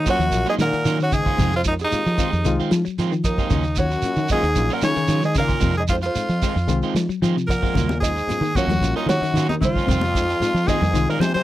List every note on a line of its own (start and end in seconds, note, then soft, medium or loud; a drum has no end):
0.05 0.45 F#2 medium
0.05 0.15 F#3 medium
0.05 0.20 F#3 medium
0.05 0.16 A#3 medium
0.05 0.19 A#3 medium
0.05 0.16 C#4 medium
0.05 0.19 C#4 medium
0.05 0.16 F4 medium
0.05 0.18 F4 medium
0.05 kick medium
0.05 closed hi-hat medium
0.05 shekere medium
0.09 0.46 F#4 loud
0.09 0.46 C#5 medium
0.19 0.30 D#2 medium
0.19 0.43 F3 medium
0.19 muted clean electric guitar stroke soft
0.19 closed hi-hat medium
0.19 shekere soft
0.30 0.44 A#1 medium
0.30 0.69 F#3 medium
0.30 0.69 A#3 medium
0.30 0.70 C#4 medium
0.30 0.70 F4 medium
0.30 muted clean electric guitar stroke soft
0.30 closed hi-hat medium
0.30 shekere medium
0.46 0.54 G#2 medium
0.46 0.57 F#3 medium
0.46 0.57 A#3 medium
0.46 0.57 C#4 medium
0.46 0.58 F4 medium
0.46 0.54 G#4 medium
0.46 0.55 D#5 medium
0.46 muted fingered electric bass stroke soft
0.46 shekere soft
0.58 0.71 A#2 medium
0.58 0.98 A#2 loud
0.58 0.71 D#3 medium
0.58 0.98 A#4 loud
0.58 0.98 F#5 loud
0.58 snare medium
0.58 closed hi-hat medium
0.58 shekere medium
0.72 0.96 D#3 medium
0.72 muted fingered electric bass stroke soft
0.72 snare soft
0.72 closed hi-hat soft
0.72 shekere soft
0.85 1.31 D#3 loud
0.85 1.00 F#3 medium
0.85 0.99 A#3 medium
0.85 0.99 C#4 medium
0.85 0.98 F4 medium
0.85 closed hi-hat medium
0.85 shekere medium
0.99 1.12 F#2 medium
0.99 1.10 D#3 medium
0.99 1.14 C#5 medium
0.99 muted clean electric guitar stroke soft
0.99 shekere soft
1.03 1.15 F#4 loud
1.12 1.35 C#3 medium
1.12 1.53 G#4 loud
1.12 1.53 D#5 medium
1.12 muted clean electric guitar stroke soft
1.12 kick medium
1.12 closed hi-hat medium
1.12 shekere medium
1.16 1.55 G#2 medium
1.26 1.39 A#3 soft
1.26 1.39 C#4 soft
1.26 1.39 F4 medium
1.26 kick medium
1.26 shekere soft
1.38 1.84 F2 medium
1.38 1.61 C3 loud
1.38 1.53 D#3 medium
1.38 1.53 G#3 medium
1.38 1.53 C4 medium
1.38 1.53 F4 medium
1.38 kick medium
1.38 closed hi-hat medium
1.38 shekere medium
1.53 1.59 F2 medium
1.53 1.61 F4 medium
1.53 1.61 C5 medium
1.53 muted clean electric guitar stroke soft
1.53 shekere soft
1.63 1.73 G#3 medium
1.63 1.74 C4 medium
1.63 1.74 D#4 medium
1.63 1.75 F4 medium
1.63 kick medium
1.63 snare soft
1.63 closed hi-hat soft
1.63 shekere medium
1.68 1.73 D#2 medium
1.68 1.74 D#4 medium
1.68 1.74 A#4 medium
1.79 2.56 D#2 medium
1.79 2.56 G#4 medium
1.79 muted clean electric guitar stroke soft
1.79 closed hi-hat medium
1.79 shekere soft
1.84 2.57 D#4 medium
1.91 2.01 G#3 medium
1.91 2.02 C4 medium
1.91 2.01 D#4 medium
1.91 2.02 F4 medium
1.91 muted fingered electric bass stroke soft
1.91 closed hi-hat medium
1.91 shekere medium
2.06 2.17 F3 medium
2.06 muted clean electric guitar stroke soft
2.06 shekere soft
2.17 2.41 D#3 medium
2.17 2.27 G#3 medium
2.17 2.32 G#3 medium
2.17 2.27 C4 medium
2.17 2.32 C4 medium
2.17 2.28 D#4 medium
2.17 2.28 F4 loud
2.17 2.31 F4 medium
2.17 kick medium
2.17 closed hi-hat soft
2.17 shekere medium
2.33 2.43 F2 medium
2.33 muted clean electric guitar stroke medium
2.33 shekere soft
2.44 2.57 C2 medium
2.44 2.68 D#3 medium
2.44 2.81 G#3 loud
2.44 2.82 C4 medium
2.44 2.82 D#4 medium
2.44 2.82 F4 loud
2.44 muted clean electric guitar stroke soft
2.44 closed hi-hat medium
2.44 shekere medium
2.60 2.71 D#3 medium
2.60 2.71 C4 medium
2.60 2.72 F4 medium
2.60 muted clean electric guitar stroke medium
2.60 shekere soft
2.71 2.83 F3 medium
2.71 snare medium
2.71 closed hi-hat medium
2.71 shekere medium
2.85 2.96 F#3 medium
2.85 muted fingered electric bass stroke soft
2.85 shekere soft
2.98 3.12 D#3 medium
2.98 3.44 F3 loud
2.98 3.13 G#3 medium
2.98 3.13 C4 medium
2.98 3.12 F4 medium
2.98 snare soft
2.98 closed hi-hat medium
2.98 shekere medium
3.12 3.35 D#3 medium
3.12 muted clean electric guitar stroke soft
3.12 shekere soft
3.24 3.74 D#2 medium
3.24 3.80 D#4 medium
3.24 3.74 A#4 medium
3.24 muted clean electric guitar stroke soft
3.24 kick medium
3.24 closed hi-hat medium
3.24 shekere medium
3.38 3.49 F3 medium
3.38 3.49 G#3 soft
3.38 3.50 C4 soft
3.38 3.49 F4 medium
3.38 kick medium
3.38 shekere soft
3.50 3.96 D#2 medium
3.50 3.74 C#3 loud
3.50 3.64 F#3 medium
3.50 3.64 A#3 medium
3.50 3.64 C#4 medium
3.50 3.64 F4 medium
3.50 kick medium
3.50 closed hi-hat medium
3.50 shekere medium
3.63 muted clean electric guitar stroke soft
3.63 shekere soft
3.76 4.31 F#2 medium
3.76 4.01 D#3 medium
3.76 3.87 F#3 medium
3.76 3.87 A#3 medium
3.76 3.88 C#4 medium
3.76 3.88 F4 medium
3.76 4.31 F#4 loud
3.76 4.31 C#5 medium
3.76 kick medium
3.76 snare soft
3.76 closed hi-hat medium
3.76 shekere medium
3.91 muted clean electric guitar stroke soft
3.91 shekere soft
4.02 4.13 F#3 medium
4.02 4.14 A#3 medium
4.02 4.14 C#4 medium
4.02 4.14 F4 medium
4.02 muted fingered electric bass stroke soft
4.02 closed hi-hat medium
4.02 shekere medium
4.16 4.28 D#3 medium
4.16 4.41 D#3 medium
4.16 muted clean electric guitar stroke soft
4.16 shekere soft
4.28 4.68 G#2 loud
4.28 4.40 F#3 medium
4.28 4.40 A#3 medium
4.28 4.45 A#3 medium
4.28 4.41 C#4 medium
4.28 4.75 G#4 loud
4.28 4.68 D#5 medium
4.28 muted clean electric guitar stroke medium
4.28 kick medium
4.28 closed hi-hat medium
4.28 shekere medium
4.33 4.45 C#4 medium
4.33 4.45 F4 medium
4.33 4.41 F4 medium
4.43 4.54 D#2 medium
4.43 muted clean electric guitar stroke soft
4.43 closed hi-hat medium
4.43 shekere soft
4.55 4.68 A#1 loud
4.55 4.93 F#3 medium
4.55 4.93 A#3 medium
4.55 4.93 C#4 medium
4.55 4.94 F4 loud
4.55 muted clean electric guitar stroke soft
4.55 closed hi-hat medium
4.55 shekere medium
4.70 4.83 A#2 medium
4.70 4.81 F#3 medium
4.70 4.82 A#3 medium
4.70 4.82 C#4 medium
4.70 4.82 F4 medium
4.70 4.84 A#4 loud
4.70 4.83 F#5 medium
4.70 muted fingered electric bass stroke soft
4.70 shekere soft
4.82 5.22 C#3 loud
4.82 4.95 D#3 medium
4.82 5.21 C#5 loud
4.82 5.21 G#5 loud
4.82 muted clean electric guitar stroke soft
4.82 snare medium
4.82 closed hi-hat medium
4.82 shekere medium
4.96 5.20 D#3 medium
4.96 muted fingered electric bass stroke soft
4.96 snare soft
4.96 closed hi-hat medium
4.96 shekere soft
5.08 5.54 D#3 loud
5.08 5.23 F#3 medium
5.08 5.21 C#4 medium
5.08 5.21 F4 medium
5.08 muted clean electric guitar stroke medium
5.08 snare soft
5.08 closed hi-hat medium
5.08 shekere medium
5.22 5.35 G#2 medium
5.22 5.34 D#3 medium
5.22 5.36 G#4 medium
5.22 5.36 D#5 medium
5.22 muted clean electric guitar stroke soft
5.22 snare soft
5.22 shekere soft
5.34 5.75 A#2 medium
5.34 5.59 C#3 medium
5.34 5.75 A#4 loud
5.34 muted clean electric guitar stroke soft
5.34 kick medium
5.34 closed hi-hat medium
5.34 shekere medium
5.40 5.76 F5 loud
5.48 5.59 A#3 soft
5.48 5.60 C#4 soft
5.48 5.59 F4 medium
5.48 kick medium
5.48 shekere soft
5.60 6.08 F2 medium
5.60 5.85 C3 loud
5.60 5.75 D#3 medium
5.60 5.75 G#3 medium
5.60 5.75 C4 medium
5.60 5.74 F4 medium
5.60 kick medium
5.60 closed hi-hat medium
5.60 shekere medium
5.75 5.82 G#2 medium
5.75 5.83 G#4 medium
5.75 muted clean electric guitar stroke soft
5.75 shekere soft
5.80 5.85 D#5 medium
5.88 5.96 F2 medium
5.88 5.99 G#3 medium
5.88 5.99 C4 medium
5.88 5.99 D#4 medium
5.88 5.96 F4 medium
5.88 5.99 F4 medium
5.88 kick medium
5.88 closed hi-hat soft
5.88 shekere medium
5.93 5.98 C5 medium
6.02 6.79 F2 medium
6.02 6.79 F4 medium
6.02 muted clean electric guitar stroke soft
6.02 snare soft
6.02 closed hi-hat soft
6.02 shekere soft
6.06 6.80 C5 medium
6.15 6.25 G#3 medium
6.15 6.25 C4 medium
6.15 6.25 D#4 medium
6.15 6.26 F4 medium
6.15 muted fingered electric bass stroke soft
6.15 closed hi-hat medium
6.15 shekere medium
6.29 6.40 F3 medium
6.29 muted clean electric guitar stroke soft
6.29 shekere soft
6.42 6.57 D#3 medium
6.42 6.52 G#3 medium
6.42 6.56 G#3 medium
6.42 6.52 C4 medium
6.42 6.56 C4 medium
6.42 6.52 D#4 medium
6.42 6.57 F4 medium
6.42 6.52 F4 medium
6.42 kick medium
6.42 open hi-hat medium
6.42 shekere medium
6.56 6.67 F2 medium
6.56 muted clean electric guitar stroke soft
6.56 shekere soft
6.68 6.80 C2 medium
6.68 6.92 D#3 medium
6.68 7.05 G#3 loud
6.68 7.05 C4 medium
6.68 7.05 D#4 medium
6.68 7.06 F4 loud
6.68 muted clean electric guitar stroke soft
6.68 closed hi-hat medium
6.68 shekere medium
6.82 6.94 D#3 medium
6.82 6.94 G#3 medium
6.82 6.95 C4 medium
6.82 6.94 F4 medium
6.82 muted fingered electric bass stroke soft
6.82 shekere soft
6.95 7.07 F3 medium
6.95 7.08 F3 medium
6.95 muted clean electric guitar stroke soft
6.95 snare medium
6.95 closed hi-hat medium
6.95 shekere medium
7.09 7.20 F#3 medium
7.09 muted fingered electric bass stroke soft
7.09 shekere soft
7.22 7.36 D#3 medium
7.22 7.34 F3 medium
7.22 7.68 F3 loud
7.22 7.36 G#3 medium
7.22 7.36 C4 medium
7.22 7.36 F4 medium
7.22 closed hi-hat medium
7.22 shekere medium
7.36 7.59 C3 medium
7.36 muted clean electric guitar stroke soft
7.36 shekere soft
7.47 7.99 A#2 medium
7.47 7.97 A#4 loud
7.47 7.99 F#5 medium
7.47 muted clean electric guitar stroke soft
7.47 kick medium
7.47 open hi-hat medium
7.47 shekere medium
7.63 7.73 F3 medium
7.63 7.76 G#3 soft
7.63 7.75 C4 soft
7.63 7.75 F4 medium
7.63 kick medium
7.63 shekere soft
7.75 8.21 D#2 medium
7.75 7.98 C#3 medium
7.75 7.90 F#3 medium
7.75 7.89 A#3 medium
7.75 7.88 F4 medium
7.75 muted clean electric guitar stroke medium
7.75 kick loud
7.75 closed hi-hat medium
7.75 low conga medium
7.75 shekere medium
7.89 muted clean electric guitar stroke soft
7.89 high conga loud
7.89 shekere soft
8.00 8.52 G#2 medium
8.00 8.11 F#3 medium
8.00 8.11 A#3 medium
8.00 8.11 C#4 medium
8.00 8.12 F4 medium
8.00 8.58 G#4 medium
8.00 8.52 D#5 medium
8.00 kick medium
8.00 snare soft
8.00 closed hi-hat medium
8.00 shekere medium
8.16 muted clean electric guitar stroke soft
8.16 shekere soft
8.27 8.37 F#3 medium
8.27 8.38 A#3 medium
8.27 8.38 C#4 medium
8.27 8.38 F4 medium
8.27 muted fingered electric bass stroke soft
8.27 snare soft
8.27 closed hi-hat medium
8.27 high conga medium
8.27 shekere medium
8.41 8.52 D#3 medium
8.41 8.65 D#3 medium
8.41 muted clean electric guitar stroke soft
8.41 shekere soft
8.55 8.96 F#2 medium
8.55 8.64 F#3 medium
8.55 8.70 F#3 medium
8.55 8.65 A#3 medium
8.55 8.70 A#3 medium
8.55 8.65 C#4 medium
8.55 8.69 C#4 medium
8.55 8.65 F4 medium
8.55 8.96 F#4 loud
8.55 8.97 C#5 medium
8.55 kick medium
8.55 closed hi-hat soft
8.55 high conga medium
8.55 shekere medium
8.67 8.79 D#2 medium
8.67 8.92 F3 medium
8.67 muted clean electric guitar stroke soft
8.67 closed hi-hat medium
8.67 low conga medium
8.67 shekere soft
8.80 8.92 A#1 medium
8.80 9.18 F#3 medium
8.80 9.18 A#3 medium
8.80 9.19 C#4 medium
8.80 9.19 F4 medium
8.80 muted clean electric guitar stroke soft
8.80 closed hi-hat medium
8.80 shekere medium
8.96 9.08 D#2 medium
8.96 9.09 F#3 medium
8.96 9.09 A#3 medium
8.96 9.09 C#4 medium
8.96 9.08 D#4 medium
8.96 9.08 F4 medium
8.96 9.07 A#4 medium
8.96 shekere soft
9.06 9.46 F#2 medium
9.06 9.19 D#3 medium
9.06 9.46 F#4 loud
9.06 9.46 C#5 medium
9.06 muted clean electric guitar stroke soft
9.06 snare medium
9.06 closed hi-hat medium
9.06 high conga medium
9.06 shekere medium
9.21 9.45 D#3 medium
9.21 muted fingered electric bass stroke soft
9.21 snare soft
9.21 closed hi-hat medium
9.21 shekere soft
9.34 9.80 D#3 loud
9.34 9.49 F#3 medium
9.34 9.48 A#3 medium
9.34 9.49 C#4 medium
9.34 9.48 F4 medium
9.34 closed hi-hat medium
9.34 shekere medium
9.48 9.54 D#2 medium
9.48 9.60 D#3 medium
9.48 9.55 D#4 medium
9.48 9.56 A#4 medium
9.48 muted clean electric guitar stroke soft
9.48 high conga medium
9.48 shekere soft
9.61 10.64 F2 loud
9.61 9.84 C#3 medium
9.61 10.69 F4 loud
9.61 muted clean electric guitar stroke soft
9.61 kick medium
9.61 closed hi-hat medium
9.61 low conga medium
9.61 shekere medium
9.65 10.65 C5 medium
9.76 9.88 A#3 soft
9.76 9.88 C#4 soft
9.76 9.88 F4 medium
9.76 kick medium
9.76 shekere soft
9.87 10.33 F2 medium
9.87 10.10 C3 medium
9.87 10.02 D#3 medium
9.87 10.02 C4 medium
9.87 10.01 F4 medium
9.87 muted clean electric guitar stroke medium
9.87 kick loud
9.87 closed hi-hat medium
9.87 low conga medium
9.87 shekere medium
10.01 muted clean electric guitar stroke soft
10.01 high conga loud
10.01 shekere soft
10.15 10.24 G#3 medium
10.15 10.24 C4 medium
10.15 10.25 D#4 medium
10.15 10.25 F4 medium
10.15 kick medium
10.15 closed hi-hat medium
10.15 shekere medium
10.30 muted clean electric guitar stroke soft
10.30 closed hi-hat medium
10.30 shekere soft
10.40 10.50 G#3 medium
10.40 10.51 C4 medium
10.40 10.51 D#4 medium
10.40 10.51 F4 loud
10.40 muted fingered electric bass stroke soft
10.40 closed hi-hat medium
10.40 shekere medium
10.54 10.66 F3 medium
10.54 muted clean electric guitar stroke soft
10.54 shekere soft
10.66 11.09 G#2 medium
10.66 10.90 D#3 medium
10.66 10.82 D#3 medium
10.66 10.77 G#3 medium
10.66 10.83 G#3 medium
10.66 10.77 C4 medium
10.66 10.83 C4 medium
10.66 10.77 D#4 medium
10.66 10.77 F4 medium
10.66 10.82 F4 medium
10.66 11.08 G#4 loud
10.66 11.09 D#5 medium
10.66 kick medium
10.66 closed hi-hat soft
10.66 high conga medium
10.66 shekere medium
10.82 10.92 F2 medium
10.82 muted clean electric guitar stroke medium
10.82 low conga medium
10.82 shekere soft
10.93 11.06 C2 medium
10.93 11.17 D#3 loud
10.93 11.31 G#3 medium
10.93 11.31 C4 medium
10.93 11.31 D#4 medium
10.93 11.31 F4 loud
10.93 muted clean electric guitar stroke soft
10.93 closed hi-hat medium
10.93 shekere medium
11.08 11.20 A#2 medium
11.08 11.21 D#3 medium
11.08 11.22 G#3 medium
11.08 11.21 A#4 loud
11.08 11.23 F5 medium
11.08 muted clean electric guitar stroke medium
11.08 shekere soft
11.19 11.34 C3 medium
11.19 11.32 F3 medium
11.19 11.34 C5 loud
11.19 11.35 G#5 medium
11.19 muted clean electric guitar stroke soft
11.19 snare medium
11.19 closed hi-hat medium
11.19 high conga loud
11.19 shekere medium
11.34 11.43 C3 loud
11.34 11.43 F#3 medium
11.34 11.43 C5 loud
11.34 11.43 G#5 medium
11.34 muted fingered electric bass stroke soft
11.34 shekere soft